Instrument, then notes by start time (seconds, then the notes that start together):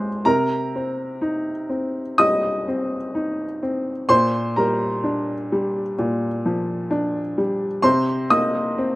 upright piano
Already playing: C3 G#3 C4 C5 D5 C6 D6
0.25 C3 A#4 A#5
0.75 C4
1.21 D#4
1.69 C4
2.18 G3 D#5 D#6
2.68 C4
3.15 D#4
3.63 C4
4.09 A#2 C5 C6
4.56 G3 A#4 A#5
5.04 D4
5.52 G3
5.99 A#2
6.46 F3
6.91 D4
7.38 G3
7.82 C3 C5 C6
8.30 A#3 D#5 D#6
8.78 C4